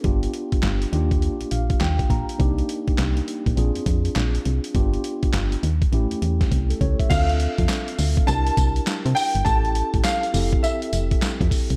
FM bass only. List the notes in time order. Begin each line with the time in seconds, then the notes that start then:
0.05 G1
0.53 G1
0.63 G1
0.93 D#2
1.41 A#1
1.52 A#1
1.81 D#2
2.10 A#1
2.40 C2
2.88 C2
2.99 C2
3.46 A#1
3.57 A#1
3.76 F2
3.86 F2
4.16 A#1
4.46 C2
4.75 G1
5.23 G1
5.34 G1
5.63 D#2
5.93 A1
6.11 E2
6.22 E2
6.52 C2
6.81 C#2
7.11 D2
7.59 F2
7.99 D2
8.28 C2
8.57 C2
9.06 C3
9.35 G1
9.46 A1
9.94 A1
10.34 F1
10.93 F1
11.41 F2
11.70 C2